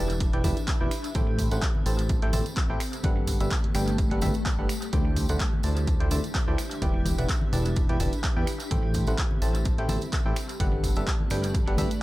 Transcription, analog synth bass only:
0.00 0.31 E1 loud
0.33 0.42 E1 medium
0.44 0.53 E1 loud
0.81 0.88 E1 loud
1.15 1.49 A1 loud
1.52 1.59 A1 medium
1.86 2.20 A1 loud
2.22 2.31 A1 medium
2.33 2.42 A1 loud
2.70 2.77 A1 loud
3.04 3.38 G1 loud
3.40 3.48 G1 medium
3.75 4.09 G1 loud
4.11 4.20 G1 loud
4.22 4.31 G1 loud
4.59 4.66 G1 loud
4.93 5.27 D2 medium
5.30 5.37 D2 medium
5.64 5.98 D2 loud
6.00 6.09 D2 medium
6.11 6.20 D2 loud
6.48 6.55 D2 loud
6.82 7.16 E1 loud
7.19 7.26 E1 loud
7.53 7.87 E1 loud
7.89 7.98 E1 medium
8.00 8.09 E1 loud
8.37 8.44 E2 loud
8.71 9.05 A1 loud
9.07 9.15 A1 medium
9.42 9.76 A1 loud
9.78 9.87 A1 medium
9.89 9.98 A1 loud
10.26 10.33 A1 medium
10.60 10.94 G1 medium
10.97 11.04 G1 loud
11.31 11.65 G1 loud
11.67 11.76 G1 medium
11.78 11.87 G1 loud

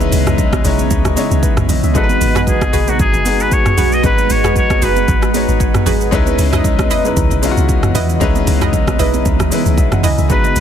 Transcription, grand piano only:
0.00 0.63 G#3 loud
0.00 0.64 C#4 loud
0.00 0.65 D#4 loud
0.00 0.66 E4 loud
0.00 1.96 F#4 medium
0.00 1.97 G#4 loud
0.00 0.51 B4 loud
0.63 1.07 G#3 medium
0.63 1.07 C#4 medium
0.63 1.08 D#4 medium
0.63 1.08 E4 medium
0.63 1.08 C#5 loud
1.16 1.80 G#3 medium
1.16 1.80 C#4 medium
1.16 1.81 D#4 medium
1.16 1.81 E4 medium
1.16 1.44 C#5 loud
1.43 1.68 B4 medium
1.70 1.83 D#5 medium
1.84 2.08 E5 medium
1.94 2.68 G#3 loud
1.94 2.68 B3 medium
1.94 2.69 D#4 medium
1.94 2.69 F#4 medium
1.94 2.03 A4 medium
2.04 2.73 B4 loud
2.87 3.18 G#3 medium
2.87 3.18 B3 medium
2.87 3.19 D#4 medium
2.87 3.19 F#4 medium
2.87 3.20 B4 medium
3.24 3.89 G#3 medium
3.24 3.89 B3 medium
3.24 3.89 D#4 medium
3.24 3.90 F#4 medium
3.24 3.90 G#4 medium
4.03 4.67 G#3 loud
4.03 4.67 B3 medium
4.03 4.68 D#4 medium
4.03 4.68 F#4 medium
4.03 4.69 B4 loud
4.81 5.24 G#3 medium
4.81 5.25 B3 medium
4.81 5.25 D#4 medium
4.81 5.26 F#4 medium
4.81 5.26 B4 medium
5.33 5.97 G#3 medium
5.33 5.98 B3 medium
5.33 5.98 D#4 medium
5.33 5.99 F#4 medium
5.33 5.99 C#5 medium
6.11 6.85 G#3 loud
6.11 6.86 C#4 loud
6.11 6.86 D#4 loud
6.11 6.87 E4 loud
6.11 6.87 B4 loud
7.04 7.35 G#3 medium
7.04 7.36 C#4 medium
7.04 7.36 D#4 medium
7.04 7.36 E4 medium
7.04 7.37 B4 medium
7.42 8.06 G#3 medium
7.42 8.06 C#4 medium
7.42 8.07 D#4 medium
7.42 8.07 E4 medium
7.42 7.51 F4 medium
7.51 8.11 F#4 loud
8.20 8.84 G#3 loud
8.20 8.85 C#4 loud
8.20 8.85 D#4 loud
8.20 8.85 E4 loud
8.20 8.86 B4 loud
8.98 9.42 G#3 medium
8.98 9.42 C#4 medium
8.98 9.42 D#4 medium
8.98 9.43 E4 medium
8.98 9.43 B4 loud
9.50 10.15 G#3 medium
9.50 10.15 C#4 medium
9.50 10.15 D#4 medium
9.50 10.16 E4 medium
9.50 10.16 B4 loud
9.78 9.92 E5 medium
9.93 10.03 F#5 medium
10.04 10.18 G#5 medium
10.19 10.43 E5 medium
10.29 10.60 G#3 loud
10.29 10.60 B3 loud
10.29 10.60 D#4 medium
10.29 10.60 F#4 medium
10.29 10.60 B4 loud

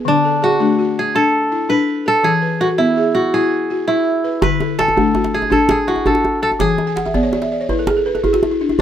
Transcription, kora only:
0.00 0.38 G#4 medium
0.08 1.76 D4 medium
0.44 1.90 F#4 medium
0.99 1.22 G#4 medium
1.16 2.07 A4 medium
1.70 2.93 B4 medium
2.08 2.30 A4 loud
2.24 3.33 G#4 loud
2.61 2.67 F#4 medium
2.78 3.87 E4 medium
3.15 4.61 F#4 medium
3.34 4.70 G#4 medium
3.88 5.44 E4 medium
4.43 5.66 B4 loud
4.79 5.40 A4 medium
5.34 5.58 G#4 medium
5.52 5.77 A4 medium
5.71 6.13 G#4 medium
5.88 7.34 F#4 medium
6.07 6.42 A4 medium
6.43 6.49 A4 medium
6.61 7.97 G#4 medium

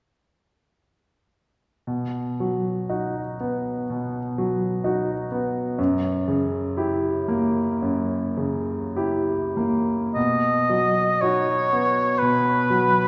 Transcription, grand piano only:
1.87 3.85 B2 soft
2.40 3.20 F#3 soft
2.89 3.35 D#4 soft
2.89 3.35 F#4 soft
3.40 4.18 B3 soft
3.90 5.75 B2 soft
4.38 5.13 F#3 soft
4.84 5.27 D#4 soft
4.84 5.27 F#4 soft
5.32 5.79 B3 soft
5.78 7.79 F#2 soft
6.28 7.09 C#3 soft
6.77 7.25 E4 soft
6.77 7.26 G4 soft
7.28 8.15 A#3 soft
7.82 10.11 F#2 soft
8.37 9.31 C#3 soft
8.96 9.53 E4 soft
8.96 9.53 G4 soft
9.57 10.16 A#3 soft
10.16 12.16 B2 soft
10.69 11.51 F#3 soft
11.22 11.67 D#4 soft
11.22 11.68 F#4 soft
11.73 12.50 B3 soft
12.22 13.08 B2 soft
12.70 13.08 F#3 soft

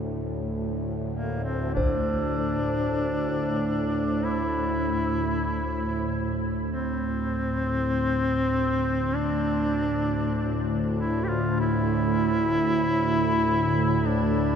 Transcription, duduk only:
1.13 1.42 A#3 medium
1.44 1.73 C4 medium
1.74 4.26 D4 medium
4.25 6.47 E4 medium
6.71 9.17 C4 loud
9.15 10.75 D4 loud
10.98 11.26 E4 medium
11.24 11.30 G4 medium
11.29 11.59 F4 medium
11.60 14.09 E4 loud
14.07 14.56 D4 medium

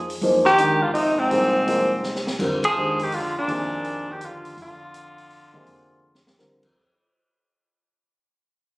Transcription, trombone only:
0.45 0.83 D#3 medium
0.81 0.92 D3 medium
0.92 1.18 C3 medium
1.17 2.27 G#2 medium
2.65 3.03 F3 medium
3.01 3.17 D#3 medium
3.15 3.38 D3 medium
3.38 4.11 A#2 medium
4.10 4.23 D#3 medium
4.22 4.58 D3 medium
4.59 6.36 D3 medium

